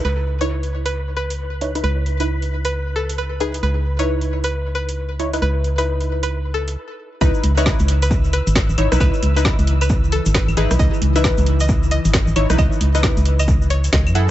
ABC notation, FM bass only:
X:1
M:4/4
L:1/16
Q:"Swing 16ths" 1/4=134
K:C#m
V:1 name="FM bass" clef=bass
C,,16 | C,,16 | C,,16 | C,,12 z4 |
C,, z C,,3 C,,6 G,,,2 G,,, G,,, B,,, | C,, z C,,3 C,,6 G,,,2 G,,, G,,, B,,, | C,, z C,,3 C,,6 G,,,2 G,,, G,,, B,,, | C,, z C,,3 C,,3 C,,4 C,, F,,3 |]